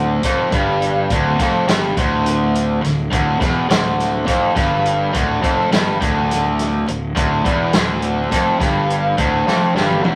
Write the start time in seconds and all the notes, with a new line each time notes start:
Already playing: D1 D2
0.23 F1 F2, kick, closed hi-hat
0.52 G1 G2, kick, closed hi-hat
0.82 closed hi-hat
1.10 D1 D2, kick, closed hi-hat
1.39 F1 F2, kick, snare, closed hi-hat
1.68 G1 G2, snare, closed hi-hat
1.97 D1 D2, kick, closed hi-hat
2.26 closed hi-hat
2.55 closed hi-hat
2.82 D1 D2, snare, closed hi-hat
3.12 D1 D2, kick, closed hi-hat
3.40 E1 E2, kick, snare, closed hi-hat
3.69 D1 D2, snare, closed hi-hat
4.00 snare, closed hi-hat
4.26 F1 F2, kick, closed hi-hat
4.55 G1 G2, kick, snare, closed hi-hat
4.85 closed hi-hat
5.12 D1 D2, kick, closed hi-hat
5.42 F1 F2, kick, closed hi-hat
5.72 G1 G2, snare, closed hi-hat
6.00 D1 D2, kick, closed hi-hat
6.31 snare, closed hi-hat
6.59 snare, closed hi-hat
6.87 D1 D2, closed hi-hat
7.15 D1 D2, kick, closed hi-hat
7.44 E1 E2, kick, closed hi-hat
7.73 D1 D2, snare, closed hi-hat
8.02 closed hi-hat
8.31 F1 F2, kick, snare, closed hi-hat
8.60 G1 G2, kick, snare, closed hi-hat
8.90 closed hi-hat
9.18 D1 D2, kick, closed hi-hat
9.47 F1 F2, snare
9.76 G1 G2, snare
9.90 high tom
10.05 E1 E2, high tom